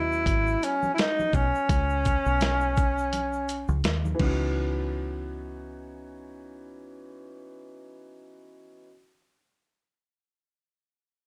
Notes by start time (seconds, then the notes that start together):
Already playing: D#2 F#3 B3 C#4 E4 F#4 D#5
0.12 shaker
0.26 G#1, kick, closed hi-hat, shaker
0.47 shaker
0.63 C#4, closed hi-hat, shaker
0.83 high conga, shaker
0.94 E4
0.98 D#4, snare, closed hi-hat, shaker
1.20 high conga, shaker
1.33 B1 C#4, kick, low conga, shaker
1.55 shaker
1.69 C#2, kick, closed hi-hat, shaker
1.90 shaker
2.05 kick, closed hi-hat, high conga, low conga, shaker
2.26 B1, shaker
2.40 snare, closed hi-hat, high conga, shaker
2.61 shaker
2.77 kick, low conga, shaker
2.98 shaker
3.13 closed hi-hat, high conga, shaker
3.33 shaker
3.49 closed hi-hat, shaker
3.68 C#2, high conga, shaker
3.84 D#2, snare, closed hi-hat, shaker
4.05 high conga, shaker
4.15 E3 B3
4.19 C#2 C#4 D#4, kick, crash, high conga
4.24 F#4